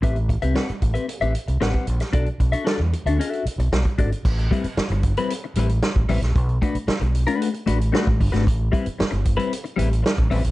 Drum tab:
CC |----------------|----------------|x---------------|----------------|
HH |xxxx-xxxxxxx-xxx|xxxx--xxxxxx-xxx|-xxx-xxxx-xx--ox|xxxx-xxxxxxx--ox|
SD |----o-------o--o|----o-------o---|----o-------o--o|----o-------o--o|
BD |o-o---o------o--|o-o----------oo-|o-o---o------o--|o-o----------oo-|

CC |----------------|
HH |x-xx-xxxxxxx-xox|
SD |----o-------o---|
BD |o-o---o------o--|